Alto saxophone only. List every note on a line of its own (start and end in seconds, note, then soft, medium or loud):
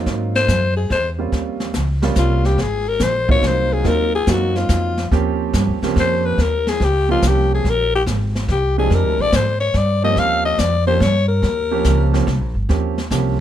0.35 0.74 C5 loud
0.77 0.89 G#4 medium
0.92 1.09 C5 medium
2.18 2.47 F4 medium
2.46 2.62 G4 medium
2.61 2.90 G#4 medium
2.88 3.05 A#4 medium
3.03 3.30 C5 medium
3.31 3.48 C#5 loud
3.47 3.74 C5 medium
3.73 3.89 G#4 medium
3.87 4.14 A#4 loud
4.15 4.32 G#4 medium
4.31 4.58 F#4 medium
4.57 5.12 F4 medium
6.00 6.27 C5 medium
6.25 6.43 B4 medium
6.42 6.70 A#4 medium
6.69 6.85 G#4 medium
6.84 7.10 G4 medium
7.11 7.29 F4 medium
7.28 7.53 G4 medium
7.54 7.71 G#4 medium
7.70 7.95 A#4 loud
7.95 8.03 G4 loud
8.51 8.76 G4 medium
8.79 8.96 G#4 medium
8.95 9.23 A#4 medium
9.21 9.37 D5 loud
9.35 9.60 C5 medium
9.60 9.78 C#5 medium
9.77 10.04 D5 medium
10.04 10.20 D#5 medium
10.19 10.45 F5 loud
10.45 10.61 D#5 loud
10.59 10.86 D5 medium
10.87 11.04 C5 loud
11.02 11.28 C#5 loud
11.28 12.23 A#4 medium